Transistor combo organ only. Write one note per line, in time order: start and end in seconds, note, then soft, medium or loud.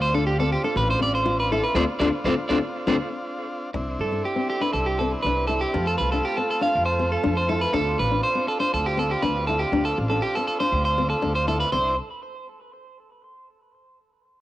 0.00 3.71 C4 medium
0.00 3.71 D4 medium
0.00 3.70 F4 medium
3.75 11.69 C4 medium
3.75 5.72 D4 medium
3.75 5.72 E4 medium
5.74 7.71 A3 medium
5.74 11.69 F4 medium
7.73 11.69 D4 medium
11.72 11.96 C4 medium
11.72 11.96 D4 medium
11.72 11.96 E4 medium